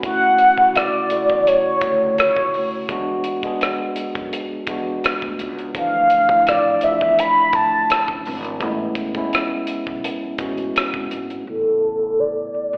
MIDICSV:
0, 0, Header, 1, 6, 480
1, 0, Start_track
1, 0, Key_signature, 3, "major"
1, 0, Tempo, 714286
1, 24, Time_signature, 4, 2, 24, 8
1, 8585, End_track
2, 0, Start_track
2, 0, Title_t, "Soft synth lead"
2, 0, Program_c, 0, 80
2, 35, Note_on_c, 0, 78, 123
2, 511, Note_on_c, 0, 74, 100
2, 521, Note_off_c, 0, 78, 0
2, 991, Note_on_c, 0, 73, 97
2, 1001, Note_off_c, 0, 74, 0
2, 1467, Note_off_c, 0, 73, 0
2, 1472, Note_on_c, 0, 73, 79
2, 1810, Note_off_c, 0, 73, 0
2, 3878, Note_on_c, 0, 77, 88
2, 4358, Note_on_c, 0, 74, 90
2, 4368, Note_off_c, 0, 77, 0
2, 4593, Note_on_c, 0, 76, 93
2, 4603, Note_off_c, 0, 74, 0
2, 4834, Note_on_c, 0, 83, 111
2, 4844, Note_off_c, 0, 76, 0
2, 5074, Note_on_c, 0, 81, 101
2, 5084, Note_off_c, 0, 83, 0
2, 5549, Note_off_c, 0, 81, 0
2, 7721, Note_on_c, 0, 69, 83
2, 8195, Note_on_c, 0, 74, 97
2, 8205, Note_off_c, 0, 69, 0
2, 8585, Note_off_c, 0, 74, 0
2, 8585, End_track
3, 0, Start_track
3, 0, Title_t, "Tine electric piano"
3, 0, Program_c, 1, 4
3, 0, Control_c, 1, 64, 127
3, 20, Note_on_c, 1, 57, 69
3, 26, Note_on_c, 1, 61, 77
3, 32, Control_c, 1, 64, 0
3, 33, Note_on_c, 1, 64, 71
3, 40, Note_on_c, 1, 66, 84
3, 145, Control_c, 1, 64, 127
3, 361, Note_off_c, 1, 57, 0
3, 364, Note_off_c, 1, 61, 0
3, 367, Note_off_c, 1, 64, 0
3, 371, Note_off_c, 1, 66, 0
3, 389, Note_on_c, 1, 57, 64
3, 394, Note_on_c, 1, 49, 57
3, 402, Note_on_c, 1, 64, 59
3, 409, Note_on_c, 1, 66, 72
3, 718, Note_off_c, 1, 57, 0
3, 720, Note_off_c, 1, 49, 0
3, 724, Note_off_c, 1, 64, 0
3, 728, Note_off_c, 1, 66, 0
3, 742, Note_on_c, 1, 57, 66
3, 747, Note_on_c, 1, 49, 61
3, 754, Note_on_c, 1, 64, 57
3, 761, Note_on_c, 1, 66, 72
3, 1636, Note_off_c, 1, 57, 0
3, 1639, Note_off_c, 1, 49, 0
3, 1642, Note_off_c, 1, 64, 0
3, 1646, Note_off_c, 1, 66, 0
3, 1940, Note_on_c, 1, 56, 99
3, 1945, Note_on_c, 1, 59, 88
3, 1951, Control_c, 1, 64, 0
3, 1953, Note_on_c, 1, 62, 90
3, 1959, Note_on_c, 1, 66, 105
3, 2056, Control_c, 1, 64, 127
3, 2281, Note_off_c, 1, 56, 0
3, 2284, Note_off_c, 1, 59, 0
3, 2288, Note_off_c, 1, 62, 0
3, 2291, Note_off_c, 1, 66, 0
3, 2309, Note_on_c, 1, 56, 88
3, 2316, Note_on_c, 1, 59, 79
3, 2323, Note_on_c, 1, 62, 77
3, 2329, Note_on_c, 1, 68, 91
3, 3084, Note_off_c, 1, 56, 0
3, 3088, Note_off_c, 1, 59, 0
3, 3091, Note_off_c, 1, 62, 0
3, 3094, Note_off_c, 1, 68, 0
3, 3141, Note_on_c, 1, 56, 78
3, 3147, Note_on_c, 1, 59, 71
3, 3154, Note_on_c, 1, 62, 71
3, 3160, Note_on_c, 1, 66, 77
3, 3812, Note_off_c, 1, 56, 0
3, 3815, Note_off_c, 1, 59, 0
3, 3819, Note_off_c, 1, 62, 0
3, 3822, Note_off_c, 1, 66, 0
3, 3858, Note_on_c, 1, 53, 79
3, 3865, Note_on_c, 1, 57, 76
3, 3872, Control_c, 1, 64, 0
3, 3872, Note_on_c, 1, 62, 78
3, 3878, Note_on_c, 1, 52, 91
3, 3989, Control_c, 1, 64, 127
3, 4200, Note_off_c, 1, 53, 0
3, 4203, Note_off_c, 1, 57, 0
3, 4207, Note_off_c, 1, 62, 0
3, 4210, Note_off_c, 1, 52, 0
3, 4226, Note_on_c, 1, 53, 64
3, 4232, Note_on_c, 1, 57, 63
3, 4239, Note_on_c, 1, 62, 54
3, 4246, Note_on_c, 1, 64, 73
3, 4556, Note_off_c, 1, 53, 0
3, 4559, Note_off_c, 1, 57, 0
3, 4562, Note_off_c, 1, 62, 0
3, 4566, Note_off_c, 1, 64, 0
3, 4579, Note_on_c, 1, 53, 64
3, 4586, Note_on_c, 1, 57, 61
3, 4592, Note_on_c, 1, 62, 64
3, 4600, Note_on_c, 1, 64, 55
3, 4638, Note_off_c, 1, 64, 0
3, 4642, Note_on_c, 1, 65, 76
3, 5475, Note_off_c, 1, 53, 0
3, 5478, Note_off_c, 1, 57, 0
3, 5481, Note_off_c, 1, 62, 0
3, 5506, Note_off_c, 1, 65, 0
3, 5778, Note_on_c, 1, 56, 94
3, 5786, Note_on_c, 1, 59, 88
3, 5792, Note_on_c, 1, 61, 80
3, 5793, Control_c, 1, 64, 0
3, 5799, Note_on_c, 1, 64, 108
3, 5894, Control_c, 1, 64, 127
3, 6120, Note_off_c, 1, 56, 0
3, 6124, Note_off_c, 1, 59, 0
3, 6127, Note_off_c, 1, 61, 0
3, 6130, Note_off_c, 1, 64, 0
3, 6146, Note_on_c, 1, 56, 83
3, 6153, Note_on_c, 1, 59, 69
3, 6159, Note_on_c, 1, 61, 78
3, 6164, Note_on_c, 1, 64, 88
3, 6923, Note_off_c, 1, 56, 0
3, 6926, Note_off_c, 1, 59, 0
3, 6929, Note_off_c, 1, 61, 0
3, 6932, Note_off_c, 1, 64, 0
3, 6978, Note_on_c, 1, 56, 71
3, 6985, Note_on_c, 1, 59, 62
3, 6992, Note_on_c, 1, 61, 67
3, 6997, Note_on_c, 1, 66, 73
3, 7651, Note_off_c, 1, 56, 0
3, 7654, Note_off_c, 1, 59, 0
3, 7658, Note_off_c, 1, 61, 0
3, 7661, Note_off_c, 1, 66, 0
3, 7689, Note_on_c, 1, 57, 43
3, 7702, Note_on_c, 1, 59, 45
3, 7711, Control_c, 1, 64, 0
3, 7715, Note_on_c, 1, 49, 42
3, 7728, Note_on_c, 1, 64, 45
3, 7836, Control_c, 1, 64, 127
3, 8585, Note_off_c, 1, 49, 0
3, 8585, Note_off_c, 1, 57, 0
3, 8585, Note_off_c, 1, 59, 0
3, 8585, Note_off_c, 1, 64, 0
3, 8585, End_track
4, 0, Start_track
4, 0, Title_t, "Upright bass"
4, 0, Program_c, 2, 32
4, 28, Note_on_c, 2, 38, 80
4, 420, Note_off_c, 2, 38, 0
4, 877, Note_on_c, 2, 40, 78
4, 967, Note_off_c, 2, 40, 0
4, 1226, Note_on_c, 2, 38, 90
4, 1422, Note_off_c, 2, 38, 0
4, 1595, Note_on_c, 2, 37, 83
4, 1686, Note_off_c, 2, 37, 0
4, 1711, Note_on_c, 2, 38, 76
4, 1905, Note_off_c, 2, 38, 0
4, 1948, Note_on_c, 2, 40, 72
4, 2340, Note_off_c, 2, 40, 0
4, 2797, Note_on_c, 2, 42, 80
4, 2887, Note_off_c, 2, 42, 0
4, 3145, Note_on_c, 2, 40, 79
4, 3342, Note_off_c, 2, 40, 0
4, 3514, Note_on_c, 2, 38, 75
4, 3605, Note_off_c, 2, 38, 0
4, 3634, Note_on_c, 2, 37, 86
4, 3827, Note_off_c, 2, 37, 0
4, 3868, Note_on_c, 2, 38, 84
4, 4260, Note_off_c, 2, 38, 0
4, 4717, Note_on_c, 2, 40, 89
4, 4807, Note_off_c, 2, 40, 0
4, 5067, Note_on_c, 2, 38, 73
4, 5263, Note_off_c, 2, 38, 0
4, 5435, Note_on_c, 2, 37, 93
4, 5526, Note_off_c, 2, 37, 0
4, 5555, Note_on_c, 2, 32, 89
4, 5788, Note_off_c, 2, 32, 0
4, 5788, Note_on_c, 2, 33, 82
4, 6180, Note_off_c, 2, 33, 0
4, 6637, Note_on_c, 2, 35, 77
4, 6727, Note_off_c, 2, 35, 0
4, 6985, Note_on_c, 2, 33, 80
4, 7182, Note_off_c, 2, 33, 0
4, 7356, Note_on_c, 2, 32, 78
4, 7446, Note_off_c, 2, 32, 0
4, 7468, Note_on_c, 2, 32, 74
4, 7663, Note_off_c, 2, 32, 0
4, 7709, Note_on_c, 2, 33, 74
4, 8400, Note_off_c, 2, 33, 0
4, 8555, Note_on_c, 2, 35, 68
4, 8585, Note_off_c, 2, 35, 0
4, 8585, End_track
5, 0, Start_track
5, 0, Title_t, "Muted upright bass strokes"
5, 752, Note_on_c, 9, 29, 44
5, 819, Note_off_c, 9, 29, 0
5, 1120, Note_on_c, 9, 29, 41
5, 1188, Note_off_c, 9, 29, 0
5, 2673, Note_on_c, 9, 29, 46
5, 2740, Note_off_c, 9, 29, 0
5, 3040, Note_on_c, 9, 29, 44
5, 3108, Note_off_c, 9, 29, 0
5, 4594, Note_on_c, 9, 29, 48
5, 4661, Note_off_c, 9, 29, 0
5, 4962, Note_on_c, 9, 29, 39
5, 5029, Note_off_c, 9, 29, 0
5, 6514, Note_on_c, 9, 29, 48
5, 6581, Note_off_c, 9, 29, 0
5, 6878, Note_on_c, 9, 29, 45
5, 6945, Note_off_c, 9, 29, 0
5, 8428, Note_on_c, 9, 29, 39
5, 8495, Note_off_c, 9, 29, 0
5, 8585, End_track
6, 0, Start_track
6, 0, Title_t, "Drums"
6, 23, Note_on_c, 9, 36, 101
6, 23, Note_on_c, 9, 42, 69
6, 90, Note_off_c, 9, 36, 0
6, 90, Note_off_c, 9, 42, 0
6, 258, Note_on_c, 9, 42, 65
6, 326, Note_off_c, 9, 42, 0
6, 387, Note_on_c, 9, 36, 80
6, 454, Note_off_c, 9, 36, 0
6, 507, Note_on_c, 9, 42, 73
6, 520, Note_on_c, 9, 37, 109
6, 575, Note_off_c, 9, 42, 0
6, 587, Note_off_c, 9, 37, 0
6, 739, Note_on_c, 9, 42, 64
6, 807, Note_off_c, 9, 42, 0
6, 871, Note_on_c, 9, 36, 73
6, 938, Note_off_c, 9, 36, 0
6, 988, Note_on_c, 9, 42, 78
6, 1056, Note_off_c, 9, 42, 0
6, 1218, Note_on_c, 9, 42, 67
6, 1220, Note_on_c, 9, 36, 97
6, 1285, Note_off_c, 9, 42, 0
6, 1287, Note_off_c, 9, 36, 0
6, 1468, Note_on_c, 9, 42, 82
6, 1478, Note_on_c, 9, 37, 116
6, 1535, Note_off_c, 9, 42, 0
6, 1546, Note_off_c, 9, 37, 0
6, 1589, Note_on_c, 9, 36, 83
6, 1656, Note_off_c, 9, 36, 0
6, 1707, Note_on_c, 9, 46, 38
6, 1774, Note_off_c, 9, 46, 0
6, 1942, Note_on_c, 9, 36, 102
6, 1943, Note_on_c, 9, 42, 70
6, 2009, Note_off_c, 9, 36, 0
6, 2010, Note_off_c, 9, 42, 0
6, 2176, Note_on_c, 9, 42, 62
6, 2244, Note_off_c, 9, 42, 0
6, 2306, Note_on_c, 9, 36, 79
6, 2310, Note_on_c, 9, 42, 35
6, 2373, Note_off_c, 9, 36, 0
6, 2377, Note_off_c, 9, 42, 0
6, 2427, Note_on_c, 9, 42, 68
6, 2440, Note_on_c, 9, 37, 96
6, 2494, Note_off_c, 9, 42, 0
6, 2507, Note_off_c, 9, 37, 0
6, 2660, Note_on_c, 9, 42, 68
6, 2727, Note_off_c, 9, 42, 0
6, 2790, Note_on_c, 9, 42, 31
6, 2791, Note_on_c, 9, 36, 81
6, 2857, Note_off_c, 9, 42, 0
6, 2858, Note_off_c, 9, 36, 0
6, 2909, Note_on_c, 9, 42, 79
6, 2976, Note_off_c, 9, 42, 0
6, 3136, Note_on_c, 9, 42, 69
6, 3140, Note_on_c, 9, 36, 99
6, 3204, Note_off_c, 9, 42, 0
6, 3208, Note_off_c, 9, 36, 0
6, 3388, Note_on_c, 9, 42, 83
6, 3399, Note_on_c, 9, 37, 121
6, 3455, Note_off_c, 9, 42, 0
6, 3466, Note_off_c, 9, 37, 0
6, 3509, Note_on_c, 9, 36, 80
6, 3576, Note_off_c, 9, 36, 0
6, 3624, Note_on_c, 9, 42, 58
6, 3691, Note_off_c, 9, 42, 0
6, 3754, Note_on_c, 9, 42, 36
6, 3821, Note_off_c, 9, 42, 0
6, 3862, Note_on_c, 9, 36, 98
6, 3862, Note_on_c, 9, 42, 76
6, 3929, Note_off_c, 9, 36, 0
6, 3929, Note_off_c, 9, 42, 0
6, 4099, Note_on_c, 9, 42, 62
6, 4166, Note_off_c, 9, 42, 0
6, 4227, Note_on_c, 9, 36, 88
6, 4294, Note_off_c, 9, 36, 0
6, 4346, Note_on_c, 9, 42, 69
6, 4359, Note_on_c, 9, 37, 102
6, 4413, Note_off_c, 9, 42, 0
6, 4426, Note_off_c, 9, 37, 0
6, 4577, Note_on_c, 9, 42, 61
6, 4644, Note_off_c, 9, 42, 0
6, 4712, Note_on_c, 9, 36, 75
6, 4779, Note_off_c, 9, 36, 0
6, 4830, Note_on_c, 9, 42, 86
6, 4897, Note_off_c, 9, 42, 0
6, 5059, Note_on_c, 9, 42, 66
6, 5062, Note_on_c, 9, 36, 99
6, 5126, Note_off_c, 9, 42, 0
6, 5129, Note_off_c, 9, 36, 0
6, 5309, Note_on_c, 9, 42, 83
6, 5320, Note_on_c, 9, 37, 120
6, 5377, Note_off_c, 9, 42, 0
6, 5387, Note_off_c, 9, 37, 0
6, 5431, Note_on_c, 9, 36, 79
6, 5498, Note_off_c, 9, 36, 0
6, 5548, Note_on_c, 9, 46, 39
6, 5615, Note_off_c, 9, 46, 0
6, 5675, Note_on_c, 9, 42, 37
6, 5743, Note_off_c, 9, 42, 0
6, 5783, Note_on_c, 9, 36, 93
6, 5783, Note_on_c, 9, 42, 66
6, 5850, Note_off_c, 9, 36, 0
6, 5850, Note_off_c, 9, 42, 0
6, 6017, Note_on_c, 9, 36, 87
6, 6017, Note_on_c, 9, 42, 67
6, 6084, Note_off_c, 9, 36, 0
6, 6084, Note_off_c, 9, 42, 0
6, 6147, Note_on_c, 9, 36, 87
6, 6150, Note_on_c, 9, 42, 35
6, 6214, Note_off_c, 9, 36, 0
6, 6218, Note_off_c, 9, 42, 0
6, 6269, Note_on_c, 9, 42, 65
6, 6282, Note_on_c, 9, 37, 100
6, 6337, Note_off_c, 9, 42, 0
6, 6349, Note_off_c, 9, 37, 0
6, 6498, Note_on_c, 9, 42, 69
6, 6565, Note_off_c, 9, 42, 0
6, 6631, Note_on_c, 9, 36, 74
6, 6698, Note_off_c, 9, 36, 0
6, 6749, Note_on_c, 9, 42, 82
6, 6816, Note_off_c, 9, 42, 0
6, 6978, Note_on_c, 9, 42, 65
6, 6980, Note_on_c, 9, 36, 101
6, 7045, Note_off_c, 9, 42, 0
6, 7048, Note_off_c, 9, 36, 0
6, 7106, Note_on_c, 9, 42, 33
6, 7173, Note_off_c, 9, 42, 0
6, 7231, Note_on_c, 9, 42, 79
6, 7242, Note_on_c, 9, 37, 119
6, 7298, Note_off_c, 9, 42, 0
6, 7309, Note_off_c, 9, 37, 0
6, 7350, Note_on_c, 9, 36, 92
6, 7417, Note_off_c, 9, 36, 0
6, 7467, Note_on_c, 9, 42, 54
6, 7534, Note_off_c, 9, 42, 0
6, 7595, Note_on_c, 9, 42, 36
6, 7662, Note_off_c, 9, 42, 0
6, 8585, End_track
0, 0, End_of_file